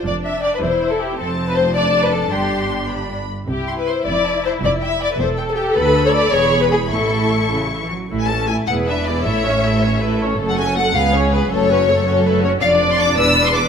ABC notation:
X:1
M:6/8
L:1/16
Q:3/8=106
K:C
V:1 name="Violin section"
z4 g2 z4 g2 | a6 a6 | c'6 b4 z2 | z2 c'2 c'2 z2 a2 a2 |
z2 g2 g2 z2 g2 g2 | [K:A] b6 b6 | c'8- c'2 z2 | z g a2 g2 f2 e2 d2 |
e8- e2 z2 | z f g2 f2 =f2 c2 B2 | c8- c2 z2 | [K:Ddor] f3 c' d'2 e'3 c' d'2 |]
V:2 name="Violin section"
d2 e2 d B c3 A G2 | A3 B c2 d3 B A2 | G6 z6 | G3 B c2 d4 c2 |
d2 e2 d B c3 A G2 | [K:A] B3 c d2 c3 B G2 | A6 z6 | z6 B6 |
c6 c2 B2 A2- | A6 G6 | A2 B2 c2 A2 B2 c2 | [K:Ddor] d6 B6 |]
V:3 name="Viola section"
D6 E6 | C6 D6 | D8- D z3 | E12- |
E6 A6- | [K:A] A6 G6 | E8- E z3 | [A,E]2 [CA]2 [A,E]2 [EG]2 [DB]2 [EG]2 |
[EA]2 [Cc]2 [EA]2 [Cc]2 [EA]2 [Cc]2 | [A,A]2 [CF]2 [A,A]2 [B,B]2 [Cc]2 [B,B]2 | [A,A]2 [CF]2 [A,A]2 [CF]2 [A,A]2 [CF]2 | [K:Ddor] [Dd]12 |]
V:4 name="Cello section" clef=bass
F,,6 E,,6 | F,,12 | G,,8- G,,2 z2 | C,6 F,,6 |
F,,6 E,,6 | [K:A] D,,6 E,,6 | A,,6 C,3 E, F,2 | A,,6 E,,6 |
A,,12 | F,,6 C,,6 | F,,12 | [K:Ddor] F,,6 E,,6 |]
V:5 name="Double bass section" clef=bass
F,,,6 E,,,6 | F,,,12 | G,,,8- G,,,2 z2 | C,,6 F,,,6 |
F,,,6 E,,,6 | [K:A] D,,6 E,,,6 | A,,,8- A,,,2 z2 | A,,,6 E,,,6 |
A,,,12 | F,,,6 C,,6 | F,,,12 | [K:Ddor] F,,,6 E,,,6 |]